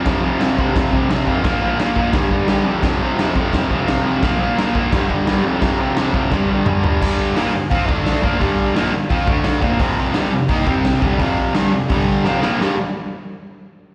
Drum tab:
CC |x-x-x-x-|x-x-x-x-|x-x-x-x-|x-x-x-x-|
HH |--------|--------|--------|--------|
SD |o-o-o-o-|o-o-o-o-|o-o-o-o-|o-o-o-o-|
T2 |--------|--------|--------|--------|
FT |--------|--------|--------|--------|
BD |o--ooo-o|o--ooo--|o--ooo--|o--ooo--|

CC |x-x-----|x-------|--------|--------|
HH |--------|--o-o-o-|o-o-o-o-|o-o-o-o-|
SD |o-o-o---|--o---o-|--o---o-|--o---o-|
T2 |------o-|--------|--------|--------|
FT |-------o|--------|--------|--------|
BD |o--oo---|o---oo-o|o---oo-o|o---oo-o|

CC |--------|--------|
HH |o-o-o---|--------|
SD |--o---oo|o-------|
T2 |--------|--------|
FT |--------|--------|
BD |o---o---|--------|